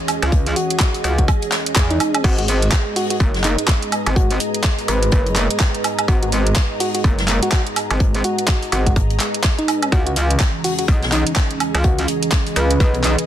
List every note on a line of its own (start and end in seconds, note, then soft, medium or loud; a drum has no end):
0.00 2.20 E3 medium
0.00 3.31 C#4 medium
0.00 9.88 G#4 medium
0.00 9.92 G#4 medium
0.00 2.20 C#5 medium
0.00 9.92 D#5 medium
0.08 closed hi-hat medium
0.08 open hi-hat loud
0.08 high woodblock medium
0.22 0.55 C#2 loud
0.22 closed hi-hat medium
0.22 high woodblock medium
0.32 kick loud
0.32 closed hi-hat medium
0.46 closed hi-hat medium
0.56 1.02 F#4 loud
0.56 closed hi-hat medium
0.56 open hi-hat loud
0.70 closed hi-hat medium
0.80 kick loud
0.80 snare loud
0.80 clap loud
0.80 closed hi-hat medium
0.94 closed hi-hat soft
0.94 open hi-hat medium
1.04 1.27 C#2 loud
1.04 1.13 F#4 medium
1.04 closed hi-hat medium
1.04 open hi-hat loud
1.18 1.25 F#4 medium
1.18 kick medium
1.18 closed hi-hat medium
1.28 kick loud
1.28 closed hi-hat medium
1.28 high woodblock medium
1.42 closed hi-hat soft
1.52 snare loud
1.52 clap medium
1.52 closed hi-hat medium
1.52 open hi-hat loud
1.66 closed hi-hat medium
1.75 1.99 E2 loud
1.75 kick loud
1.75 snare loud
1.75 clap loud
1.75 closed hi-hat loud
1.90 2.24 D#4 medium
1.90 closed hi-hat medium
2.00 closed hi-hat medium
2.00 open hi-hat loud
2.00 high woodblock medium
2.14 closed hi-hat medium
2.14 high woodblock medium
2.24 2.71 G#1 loud
2.24 9.88 G#3 medium
2.24 2.33 F#4 medium
2.24 9.88 B4 medium
2.24 9.88 D#5 medium
2.24 kick loud
2.24 closed hi-hat medium
2.24 crash medium
2.38 2.45 F#4 medium
2.38 closed hi-hat medium
2.44 11.68 A#5 medium
2.48 closed hi-hat medium
2.48 open hi-hat loud
2.62 closed hi-hat medium
2.72 kick loud
2.72 snare loud
2.72 clap loud
2.72 closed hi-hat medium
2.96 3.05 F#4 medium
2.96 open hi-hat loud
2.96 open hi-hat medium
3.10 3.17 F#4 medium
3.10 closed hi-hat medium
3.20 3.56 F#1 loud
3.20 kick loud
3.20 closed hi-hat medium
3.34 snare soft
3.34 closed hi-hat soft
3.44 3.62 D#4 loud
3.44 clap medium
3.44 closed hi-hat medium
3.44 open hi-hat loud
3.58 closed hi-hat medium
3.68 kick loud
3.68 snare loud
3.68 clap loud
3.68 closed hi-hat medium
3.82 closed hi-hat medium
3.92 closed hi-hat medium
3.92 open hi-hat loud
3.92 high woodblock medium
4.06 4.39 G#1 loud
4.06 closed hi-hat medium
4.06 high woodblock medium
4.16 4.34 F#4 medium
4.16 kick loud
4.16 closed hi-hat loud
4.31 closed hi-hat medium
4.40 closed hi-hat medium
4.40 open hi-hat loud
4.54 closed hi-hat medium
4.63 kick loud
4.63 snare loud
4.63 clap loud
4.63 closed hi-hat loud
4.78 closed hi-hat soft
4.78 open hi-hat medium
4.88 5.11 G#1 loud
4.88 5.56 B4 loud
4.88 closed hi-hat medium
4.88 open hi-hat loud
5.03 closed hi-hat medium
5.11 5.48 F#1 loud
5.11 kick loud
5.11 closed hi-hat medium
5.26 closed hi-hat soft
5.36 clap medium
5.36 closed hi-hat medium
5.36 open hi-hat loud
5.50 closed hi-hat medium
5.60 kick loud
5.60 snare loud
5.60 clap loud
5.60 closed hi-hat loud
5.75 closed hi-hat medium
5.84 closed hi-hat medium
5.84 open hi-hat loud
5.84 high woodblock medium
5.99 closed hi-hat medium
5.99 high woodblock medium
6.08 6.55 G#1 loud
6.08 6.17 F#4 medium
6.08 kick loud
6.08 closed hi-hat medium
6.22 6.29 F#4 medium
6.22 closed hi-hat medium
6.32 closed hi-hat medium
6.32 open hi-hat loud
6.47 closed hi-hat medium
6.56 kick loud
6.56 snare loud
6.56 clap loud
6.56 closed hi-hat medium
6.80 6.89 F#4 medium
6.80 open hi-hat loud
6.80 open hi-hat medium
6.95 7.01 F#4 medium
6.95 closed hi-hat medium
7.04 7.40 F#1 loud
7.04 kick loud
7.04 closed hi-hat medium
7.19 snare soft
7.19 closed hi-hat soft
7.28 clap medium
7.28 closed hi-hat medium
7.28 open hi-hat loud
7.42 7.49 F#4 medium
7.42 closed hi-hat medium
7.52 kick loud
7.52 snare loud
7.52 clap loud
7.52 closed hi-hat medium
7.67 closed hi-hat soft
7.76 closed hi-hat medium
7.76 open hi-hat loud
7.76 high woodblock medium
7.91 8.23 G#1 loud
7.91 closed hi-hat medium
7.91 high woodblock medium
8.00 kick loud
8.00 closed hi-hat medium
8.15 closed hi-hat medium
8.24 8.70 F#4 loud
8.24 open hi-hat loud
8.38 closed hi-hat medium
8.48 kick loud
8.48 snare loud
8.48 clap loud
8.63 closed hi-hat soft
8.63 open hi-hat medium
8.72 8.95 G#1 loud
8.72 8.81 F#4 medium
8.72 closed hi-hat medium
8.72 open hi-hat loud
8.86 8.93 F#4 medium
8.86 kick medium
8.86 closed hi-hat medium
8.96 9.19 G#1 loud
8.96 kick loud
8.96 closed hi-hat medium
9.10 closed hi-hat soft
9.20 clap medium
9.20 closed hi-hat medium
9.20 open hi-hat loud
9.34 closed hi-hat medium
9.44 kick loud
9.44 snare loud
9.44 clap loud
9.44 closed hi-hat medium
9.59 9.92 D#4 medium
9.59 closed hi-hat medium
9.68 closed hi-hat medium
9.68 open hi-hat loud
9.68 high woodblock medium
9.83 closed hi-hat medium
9.83 high woodblock medium
9.92 10.39 C#2 loud
9.92 13.26 E3 medium
9.92 13.26 C#4 medium
9.92 10.01 F#4 medium
9.92 13.26 G#4 medium
9.92 kick loud
9.92 closed hi-hat medium
10.04 10.13 F#4 medium
10.04 13.26 G#4 medium
10.04 closed hi-hat medium
10.16 closed hi-hat medium
10.16 open hi-hat loud
10.31 closed hi-hat medium
10.40 kick loud
10.40 snare loud
10.40 clap loud
10.40 closed hi-hat medium
10.52 13.26 D#5 medium
10.64 10.73 F#4 medium
10.64 open hi-hat loud
10.64 open hi-hat medium
10.79 10.85 F#4 medium
10.79 closed hi-hat medium
10.88 11.24 B1 medium
10.88 kick loud
10.88 closed hi-hat medium
11.03 snare soft
11.03 closed hi-hat soft
11.12 11.30 D#4 loud
11.12 clap medium
11.12 closed hi-hat medium
11.12 open hi-hat loud
11.27 closed hi-hat medium
11.36 kick loud
11.36 snare loud
11.36 clap loud
11.36 closed hi-hat medium
11.51 closed hi-hat medium
11.60 closed hi-hat medium
11.60 open hi-hat loud
11.60 high woodblock medium
11.75 12.07 C#2 loud
11.75 closed hi-hat medium
11.75 high woodblock medium
11.84 12.02 F#4 medium
11.84 kick loud
11.84 closed hi-hat loud
11.99 closed hi-hat medium
12.08 closed hi-hat medium
12.08 open hi-hat loud
12.23 closed hi-hat medium
12.31 kick loud
12.31 snare loud
12.31 clap loud
12.31 closed hi-hat medium
12.47 closed hi-hat soft
12.47 open hi-hat medium
12.56 12.79 C#2 loud
12.56 13.24 B4 loud
12.56 closed hi-hat medium
12.56 open hi-hat loud
12.71 closed hi-hat medium
12.80 13.16 B1 loud
12.80 kick loud
12.80 closed hi-hat medium
12.94 closed hi-hat soft
13.04 clap medium
13.04 closed hi-hat medium
13.04 open hi-hat loud
13.19 closed hi-hat medium